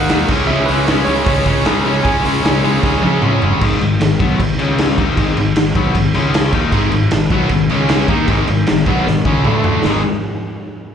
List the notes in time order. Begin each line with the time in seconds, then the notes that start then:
Already playing: D#3 A#3 D#4 F#5
0.09 D#2 D#3 A#3, snare, open hi-hat
0.13 D#4
0.28 C#2 C#3 G#3, kick, crash
0.32 C#4
0.47 C#2 C#3 E5
0.52 G#3 C#4
0.66 B4, open hi-hat
0.70 C#2 C#3 G#3 C#4
0.87 C#2 C#3 G#3 C#4, snare, open hi-hat
1.04 C#2 C#3 C#5, open hi-hat
1.09 G#3 C#4
1.25 C#2 C#3 G#3 C#5, kick, open hi-hat
1.29 C#4
1.46 C#2 C#3 G#3 C#4, kick, open hi-hat
1.65 C#2 C#3 G#3 C#4, snare, open hi-hat
1.85 C#2 C#3 G#3 C#4, open hi-hat
2.03 C#2 C#3 G#3 C#4 G#5, kick, open hi-hat
2.25 C#2 C#3 G#3 C#4, open hi-hat
2.44 C#2 C#3 G#3 C#4, snare, open hi-hat
2.64 C#2 C#3 G#3 C#4, open hi-hat
2.83 C#2 C#3 G#3 C#4, kick, snare
3.03 C#3 G#3 C#4, high tom
3.22 C#2 C#3 G#3 C#4, mid tom
3.42 G1 C#3 G#3 C#4, floor tom
3.61 G#1 G#2 D#3 G#3, kick, crash
3.81 G#1 G#2 D#3, crash
4.00 G#1 G#2 D#3, snare, crash
4.20 B1 B2 F#3 B3, kick, crash
4.39 G#1 G#2 D#3, kick, crash
4.59 C#2 C#3 G#3 C#4, crash
4.78 snare, crash
4.90 snare
4.98 D#2 D#3 A#3 D#4, kick, crash
5.17 G#1 G#2 D#3 G#3, kick, crash
5.37 G#1 G#2 D#3, crash
5.56 G#1 G#2 D#3, snare, crash
5.75 B1 B2 F#3 B3, kick, crash
5.95 G#1 G#2 D#3, kick, crash
6.14 C#2 C#3 G#3 C#4, crash
6.34 snare, crash
6.45 snare
6.53 D#2 D#3 A#3 D#4, kick, crash
6.72 G#1 G#2 D#3 G#3, kick, crash
6.92 G#1 G#2 D#3, crash
7.11 G#1 G#2 D#3, snare, crash
7.30 B1 B2 F#3 B3, kick, crash
7.49 G#1 G#2 D#3, kick, crash
7.69 C#2 C#3 G#3 C#4, crash
7.89 snare, crash
8.08 D#2 D#3 A#3 D#4, kick, crash
8.28 G#1 G#2 D#3 G#3, kick, crash
8.47 G#1 G#2 D#3, crash
8.67 G#1 G#2 D#3, snare, crash
8.86 B1 B2 F#3 B3, kick, crash
9.07 G#1 G#2 D#3, snare
9.25 C#2 C#3 G#3 C#4, kick
9.45 D2 D3 A3 D4, mid tom
9.64 floor tom
9.84 G#1 G#2 D#3 G#3, snare